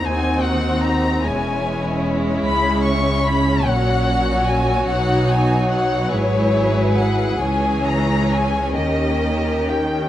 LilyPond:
<<
  \new Staff \with { instrumentName = "Violin section" } { \time 6/8 \key cis \dorian \tempo 4. = 49 gis''8 ges''8 ais''8 gis''4 r8 | b''8 cis'''8 b''8 fis''4 gis''8 | fis''8 gis''8 fis''8 cis''4 fis''8 | gis''8 ais''8 gis''8 dis''4 g''8 | }
  \new Staff \with { instrumentName = "Violin section" } { \time 6/8 \key cis \dorian << { c''4. cis''4.~ | cis''2.~ | cis''4. b'4. | cis''4. ais'4. | } \\ { ges'4. e'4.~ | e'4. fis'4.~ | fis'4. gis'4.~ | gis'4. g'4. | } >> }
  \new Staff \with { instrumentName = "Viola section" } { \time 6/8 \key cis \dorian << { ees'4. cis'4.~ | cis'2. | dis'4. e'4. | cis'2. | } \\ { c'4. gis4.~ | gis4. fis4.~ | fis2. | e4. dis4. | } >> }
  \new Staff \with { instrumentName = "Cello section" } { \clef bass \time 6/8 \key cis \dorian ees,4. e,4. | cis4. ais,4. | b,4. gis,4. | cis,4. dis,4. | }
  \new Staff \with { instrumentName = "Double bass section" } { \clef bass \time 6/8 \key cis \dorian ees,4. e,,4. | cis,4. ais,,4. | b,,4. gis,,4. | cis,4. dis,4. | }
>>